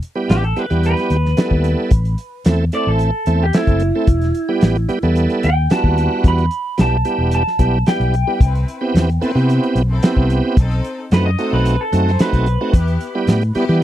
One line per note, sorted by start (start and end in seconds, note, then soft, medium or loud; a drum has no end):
0.03 closed hi-hat medium
0.15 0.44 G3 medium
0.15 0.44 B3 medium
0.15 0.44 E4 medium
0.15 0.44 G4 medium
0.29 0.52 A1 medium
0.29 0.43 G4 medium
0.29 snare loud
0.29 closed hi-hat medium
0.43 0.59 A4 medium
0.43 closed hi-hat soft
0.56 0.66 G3 medium
0.56 0.66 B3 medium
0.56 0.66 E4 medium
0.56 0.66 G4 medium
0.56 0.84 B4 medium
0.56 muted fingered electric bass stroke soft
0.56 closed hi-hat medium
0.70 0.93 E2 medium
0.70 1.17 G3 medium
0.70 1.17 B3 medium
0.70 1.17 E4 medium
0.70 1.17 G4 medium
0.70 closed hi-hat soft
0.83 2.43 B4 medium
0.83 closed hi-hat medium
0.97 snare soft
0.97 closed hi-hat soft
1.10 1.33 D#2 medium
1.10 closed hi-hat medium
1.26 snare soft
1.37 1.92 G3 medium
1.37 1.92 B3 medium
1.37 1.92 E4 medium
1.37 1.92 A4 medium
1.37 snare loud
1.37 closed hi-hat medium
1.51 1.74 D#2 medium
1.51 kick medium
1.64 closed hi-hat medium
1.91 2.14 A1 medium
1.91 kick loud
1.91 closed hi-hat medium
2.05 closed hi-hat soft
2.18 closed hi-hat medium
2.45 2.69 E2 medium
2.45 2.65 A3 medium
2.45 2.65 C4 medium
2.45 2.65 E4 medium
2.45 2.65 A4 medium
2.45 snare loud
2.45 closed hi-hat medium
2.72 3.11 A3 medium
2.72 3.11 C4 medium
2.72 3.11 E4 medium
2.72 3.11 A4 medium
2.72 2.87 D5 medium
2.72 closed hi-hat medium
2.87 3.10 A1 medium
2.87 3.40 A4 medium
2.99 closed hi-hat medium
3.26 3.50 E2 medium
3.26 3.46 A3 medium
3.26 3.46 C4 medium
3.26 3.46 E4 medium
3.26 3.46 A4 medium
3.26 closed hi-hat medium
3.43 3.55 G4 medium
3.53 3.83 A3 medium
3.53 3.83 C4 medium
3.53 3.82 E4 medium
3.53 5.13 E4 medium
3.53 3.83 A4 medium
3.53 snare loud
3.53 closed hi-hat medium
3.67 3.90 F#1 medium
3.67 kick medium
3.67 closed hi-hat soft
3.80 closed hi-hat medium
3.95 4.09 A3 medium
3.95 4.08 C4 medium
3.95 4.08 E4 medium
3.95 4.09 A4 medium
4.07 4.30 E1 medium
4.07 kick loud
4.07 closed hi-hat medium
4.21 snare soft
4.21 closed hi-hat soft
4.35 closed hi-hat medium
4.49 4.77 G3 medium
4.49 4.77 B3 medium
4.49 4.77 E4 medium
4.49 4.77 G4 loud
4.61 4.85 A1 medium
4.61 snare loud
4.61 closed hi-hat medium
4.75 closed hi-hat soft
4.89 4.99 G3 loud
4.89 4.99 B3 medium
4.89 4.99 E4 medium
4.89 4.99 G4 loud
4.89 muted fingered electric bass stroke soft
4.89 closed hi-hat medium
5.02 5.26 E2 medium
5.02 5.50 G3 loud
5.02 5.50 B3 medium
5.02 5.50 E4 medium
5.02 5.50 A4 loud
5.02 closed hi-hat soft
5.16 closed hi-hat medium
5.30 closed hi-hat soft
5.43 5.67 D#2 medium
5.43 5.70 G5 loud
5.43 closed hi-hat medium
5.70 6.46 G3 medium
5.70 6.46 B3 medium
5.70 6.46 E4 medium
5.70 6.46 F#4 medium
5.70 6.24 A5 medium
5.70 snare loud
5.70 closed hi-hat medium
5.84 6.07 D#2 medium
5.84 kick medium
5.98 closed hi-hat medium
6.24 6.47 E2 medium
6.24 6.79 B5 medium
6.24 kick loud
6.24 closed hi-hat medium
6.38 closed hi-hat soft
6.51 closed hi-hat medium
6.78 7.02 B1 medium
6.78 6.97 G3 medium
6.78 6.97 B3 medium
6.78 6.97 E4 medium
6.78 6.97 G4 medium
6.78 7.33 A5 medium
6.78 snare loud
6.78 closed hi-hat medium
7.05 7.43 G3 medium
7.05 7.43 B3 medium
7.05 7.43 E4 medium
7.05 7.43 G4 medium
7.05 closed hi-hat medium
7.18 7.42 E1 medium
7.31 7.86 A5 medium
7.31 closed hi-hat medium
7.47 snare soft
7.59 7.82 B1 medium
7.59 7.79 G3 medium
7.59 7.78 B3 medium
7.59 7.78 E4 medium
7.59 7.79 G4 medium
7.59 kick medium
7.59 closed hi-hat medium
7.86 8.15 G3 medium
7.86 8.15 B3 medium
7.86 8.15 E4 medium
7.86 8.15 G4 medium
7.86 9.46 G5 medium
7.86 snare loud
7.86 closed hi-hat medium
8.00 8.23 B1 medium
8.00 closed hi-hat soft
8.14 closed hi-hat medium
8.27 8.41 G3 medium
8.27 8.41 B3 medium
8.27 8.41 E4 medium
8.27 8.41 G4 medium
8.41 8.64 C2 medium
8.41 8.82 C4 medium
8.41 8.82 E4 medium
8.41 8.83 B4 medium
8.41 kick loud
8.41 closed hi-hat medium
8.55 closed hi-hat soft
8.68 closed hi-hat medium
8.81 9.10 B3 medium
8.81 9.10 C4 medium
8.81 9.10 E4 medium
8.81 9.10 G4 loud
8.94 9.17 E2 medium
8.94 snare loud
8.94 closed hi-hat medium
9.10 closed hi-hat soft
9.21 9.32 B3 loud
9.21 9.32 C4 medium
9.21 9.56 C4 medium
9.21 9.32 E4 medium
9.21 9.57 E4 medium
9.21 9.32 A4 loud
9.21 9.57 B4 loud
9.21 muted fingered electric bass stroke soft
9.21 closed hi-hat medium
9.35 9.58 C3 medium
9.35 9.83 B3 medium
9.35 9.82 C4 medium
9.35 9.82 E4 medium
9.35 9.82 G4 loud
9.35 closed hi-hat soft
9.49 closed hi-hat medium
9.63 closed hi-hat soft
9.75 9.98 B1 medium
9.75 closed hi-hat medium
9.90 10.24 C4 medium
9.90 10.24 E4 medium
9.90 10.25 A4 medium
10.02 10.57 B3 medium
10.02 10.57 C4 medium
10.02 10.57 E4 medium
10.02 10.57 G4 loud
10.02 snare loud
10.02 closed hi-hat medium
10.16 10.40 C2 medium
10.16 kick medium
10.30 closed hi-hat medium
10.57 10.80 B1 medium
10.57 10.98 C4 medium
10.57 10.99 D#4 medium
10.57 10.99 A4 loud
10.57 kick loud
10.57 closed hi-hat medium
10.71 closed hi-hat soft
10.84 closed hi-hat medium
11.11 11.35 F#2 medium
11.11 11.31 A3 medium
11.11 11.31 C4 medium
11.11 11.31 D#4 medium
11.11 11.31 F#4 medium
11.11 11.25 B4 medium
11.11 snare loud
11.11 closed hi-hat medium
11.26 11.52 D#5 medium
11.38 11.76 A3 medium
11.38 11.73 C4 medium
11.38 11.77 C4 medium
11.38 11.76 D#4 medium
11.38 11.73 D#4 medium
11.38 11.76 F#4 medium
11.38 11.74 A4 medium
11.38 closed hi-hat medium
11.53 11.75 B1 medium
11.53 11.79 B4 medium
11.65 closed hi-hat medium
11.81 12.19 A4 medium
11.92 12.16 F#2 medium
11.92 12.12 A3 medium
11.92 12.12 C4 medium
11.92 12.12 D#4 medium
11.92 12.12 F#4 medium
11.92 closed hi-hat medium
12.05 12.40 C4 medium
12.05 12.40 D#4 medium
12.05 12.41 C5 medium
12.05 snare soft
12.19 12.48 A3 medium
12.19 12.48 C4 medium
12.19 12.48 D#4 medium
12.19 12.48 F#4 medium
12.19 13.79 B4 loud
12.19 snare loud
12.19 closed hi-hat medium
12.33 12.56 B1 medium
12.33 kick medium
12.33 closed hi-hat soft
12.46 closed hi-hat medium
12.61 12.74 A3 medium
12.61 12.74 C4 medium
12.61 12.74 D#4 medium
12.61 12.74 F#4 medium
12.73 12.96 E2 medium
12.73 13.15 B3 medium
12.73 13.15 E4 medium
12.73 13.16 G4 medium
12.73 kick loud
12.73 closed hi-hat medium
12.88 closed hi-hat soft
13.01 closed hi-hat medium
13.15 13.43 G3 medium
13.15 13.43 B3 medium
13.15 13.43 E4 medium
13.15 13.43 G4 loud
13.27 13.51 A2 medium
13.27 snare loud
13.27 closed hi-hat medium
13.41 closed hi-hat soft
13.55 13.65 G3 loud
13.55 13.82 B3 medium
13.55 13.65 B3 loud
13.55 13.65 E4 medium
13.55 13.80 E4 medium
13.55 13.65 G4 loud
13.55 13.83 G4 loud
13.55 muted fingered electric bass stroke soft
13.55 closed hi-hat medium
13.69 13.80 E3 medium
13.69 13.82 G3 loud
13.69 13.82 B3 medium
13.69 13.82 E4 medium
13.69 13.82 G4 loud
13.69 closed hi-hat soft